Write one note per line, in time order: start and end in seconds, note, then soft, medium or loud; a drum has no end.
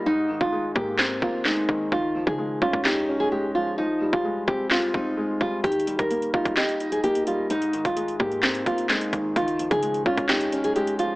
0.06 1.22 G#2 medium
0.06 0.39 D#4 loud
0.29 1.45 D#3 medium
0.41 0.74 G#1 loud
0.41 0.74 F4 medium
0.41 kick medium
0.52 1.44 G#3 medium
0.75 1.20 G#2 loud
0.75 1.21 A#3 medium
0.75 1.19 G4 medium
0.75 kick loud
0.98 1.92 C4 loud
0.98 snare loud
0.98 clap medium
1.22 1.67 G#1 loud
1.22 1.92 A#3 medium
1.22 1.41 F4 medium
1.22 kick medium
1.45 1.92 G#3 medium
1.45 1.89 D#4 medium
1.45 snare loud
1.45 clap medium
1.69 1.91 G#1 loud
1.69 1.90 D#3 medium
1.69 kick medium
1.92 2.25 C#2 loud
1.92 3.08 D#3 medium
1.92 2.25 F4 medium
1.92 kick loud
2.15 3.31 F3 medium
2.27 2.60 C#3 loud
2.27 2.60 G#4 medium
2.27 kick medium
2.38 3.30 G#3 medium
2.62 2.73 C#2 loud
2.62 3.07 C#4 medium
2.62 2.81 F4 medium
2.62 kick loud
2.73 3.74 C#2 loud
2.73 kick medium
2.85 3.78 D#4 medium
2.85 3.18 G4 medium
2.85 snare loud
2.85 clap medium
3.08 3.78 C#4 medium
3.20 3.29 G#4 medium
3.32 3.78 G#3 medium
3.32 3.51 G4 medium
3.55 3.77 F3 medium
3.55 3.74 F4 medium
3.78 4.94 F3 medium
3.78 4.11 D#4 loud
4.01 5.18 G3 medium
4.13 4.46 F1 loud
4.13 4.46 F4 medium
4.13 kick loud
4.25 5.16 G#3 medium
4.47 4.92 F1 loud
4.47 4.93 C4 medium
4.47 4.67 G4 medium
4.47 kick loud
4.70 5.64 F4 loud
4.70 4.90 F4 medium
4.70 snare loud
4.70 clap medium
4.94 5.17 F1 loud
4.94 5.64 C4 medium
4.94 5.38 D#4 medium
4.94 kick medium
5.17 5.64 G#3 medium
5.41 5.63 F1 loud
5.41 5.64 G3 medium
5.41 5.60 F4 loud
5.41 kick medium
5.64 5.98 D#1 loud
5.64 6.80 D#3 medium
5.64 5.97 G4 medium
5.64 kick loud
5.64 closed hi-hat medium
5.72 closed hi-hat medium
5.80 closed hi-hat medium
5.87 7.03 G3 medium
5.87 closed hi-hat medium
5.99 6.32 G1 loud
5.99 6.32 A#4 medium
5.99 kick medium
5.99 closed hi-hat medium
6.11 7.02 A#3 medium
6.11 closed hi-hat medium
6.22 closed hi-hat soft
6.34 6.45 D#1 loud
6.34 6.79 D#4 medium
6.34 6.53 F4 medium
6.34 kick loud
6.45 7.46 D#1 loud
6.45 kick medium
6.45 closed hi-hat soft
6.57 6.90 G4 medium
6.57 7.50 D#5 loud
6.57 snare loud
6.57 clap medium
6.57 closed hi-hat medium
6.69 closed hi-hat medium
6.80 7.50 D#4 medium
6.80 closed hi-hat medium
6.92 7.02 G#4 medium
6.92 closed hi-hat medium
7.04 7.50 A#3 medium
7.04 7.23 G4 medium
7.04 closed hi-hat medium
7.15 closed hi-hat medium
7.27 7.50 G3 medium
7.27 7.46 F4 medium
7.27 closed hi-hat medium
7.50 8.67 G#2 medium
7.50 7.83 D#4 loud
7.50 closed hi-hat medium
7.62 closed hi-hat medium
7.73 8.90 D#3 medium
7.73 closed hi-hat medium
7.85 8.18 G#1 loud
7.85 8.18 F4 medium
7.85 kick medium
7.85 closed hi-hat medium
7.97 8.88 G#3 medium
7.97 closed hi-hat medium
8.08 closed hi-hat soft
8.20 8.65 G#2 loud
8.20 8.65 A#3 medium
8.20 8.63 G4 medium
8.20 kick loud
8.32 closed hi-hat soft
8.43 9.36 C4 medium
8.43 snare loud
8.43 clap medium
8.43 closed hi-hat medium
8.55 closed hi-hat medium
8.66 9.11 G#1 loud
8.66 9.36 A#3 medium
8.66 8.86 F4 medium
8.66 kick medium
8.66 closed hi-hat medium
8.78 closed hi-hat medium
8.89 9.36 G#3 medium
8.89 9.33 D#4 medium
8.89 snare loud
8.89 clap medium
8.89 closed hi-hat medium
9.01 closed hi-hat medium
9.13 9.35 G#1 loud
9.13 9.34 D#3 medium
9.13 kick medium
9.13 closed hi-hat medium
9.36 9.70 C#2 loud
9.36 10.52 D#3 loud
9.36 9.69 F4 medium
9.36 kick loud
9.36 closed hi-hat medium
9.48 closed hi-hat medium
9.59 10.76 F3 medium
9.59 closed hi-hat medium
9.71 10.05 C#3 loud
9.71 10.04 G#4 medium
9.71 kick medium
9.71 closed hi-hat medium
9.83 10.74 G#3 medium
9.83 closed hi-hat medium
9.94 closed hi-hat soft
10.06 10.17 C#2 loud
10.06 10.51 C#4 medium
10.06 10.25 F4 medium
10.06 kick loud
10.17 11.15 C#2 loud
10.17 kick loud
10.17 closed hi-hat soft
10.29 11.15 D#4 medium
10.29 10.62 G4 medium
10.29 snare loud
10.29 clap medium
10.29 closed hi-hat medium
10.41 closed hi-hat medium
10.52 11.15 C#4 medium
10.52 closed hi-hat medium
10.64 10.74 G#4 medium
10.64 closed hi-hat medium
10.76 11.15 G#3 medium
10.76 10.95 G4 medium
10.76 closed hi-hat medium
10.87 closed hi-hat medium
10.99 11.15 F3 medium
10.99 11.15 F4 medium
10.99 closed hi-hat medium